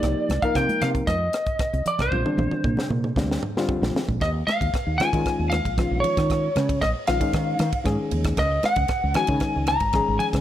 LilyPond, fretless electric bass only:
\new Staff \with { instrumentName = "Fretless electric bass" } { \clef bass \time 4/4 \key bes \mixolydian \tempo 4 = 115 c,16 r16 c,16 r16 c16 r16 c8 f,8 r8. c,16 r16 c,16 | bes,,16 r16 bes,,16 r16 bes,16 r16 bes,8 d,8 r8. bes,,16 r16 bes,,16 | \key ees \minor ees,8 r16 ees,16 r16 ees,16 r16 ees16 r16 ees,8 bes,,8 bes,,16 r16 ees16~ | ees8 des8 bes,,16 r16 bes,,16 r16 ees8 ees16 r16 aes,16 r16 ees,8 |
des,8 r16 des,16 r16 des,16 r16 des16 r16 des,8 aes,,8 aes,,16 r16 des16 | }